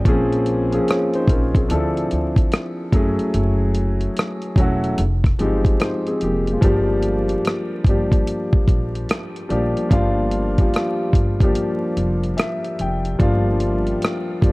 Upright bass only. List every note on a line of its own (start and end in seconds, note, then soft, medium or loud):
0.06 0.77 A#1 loud
1.28 1.64 A#1 medium
1.71 2.06 D2 loud
2.13 2.47 D2 medium
2.93 3.16 F#1 loud
3.34 4.06 F#1 loud
4.56 4.92 E1 medium
4.99 5.34 F1 medium
5.40 5.75 G1 medium
6.22 6.58 F1 medium
6.63 7.34 G1 loud
7.85 8.21 G1 medium
8.68 9.04 A#1 medium
9.50 9.73 A#1 medium
9.91 10.63 G1 loud
11.14 11.50 G1 medium
11.97 12.33 F1 medium
12.80 13.15 F1 medium
13.20 13.92 G1 loud
14.43 14.52 G1 medium